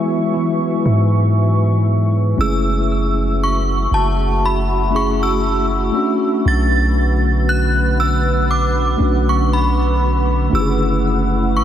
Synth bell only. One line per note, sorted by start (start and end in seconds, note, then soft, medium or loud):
2.41 3.37 E6 loud
3.43 3.94 C#6 loud
3.94 4.45 A5 medium
4.46 4.91 B5 medium
4.96 5.23 C#6 medium
5.23 5.92 E6 medium
6.48 7.51 A6 loud
7.49 8.00 F#6 loud
8.00 8.46 E6 medium
8.51 9.30 D6 loud
9.29 9.52 C#6 medium
9.53 10.26 B5 medium
10.55 11.58 E6 medium
11.57 11.64 C#6 medium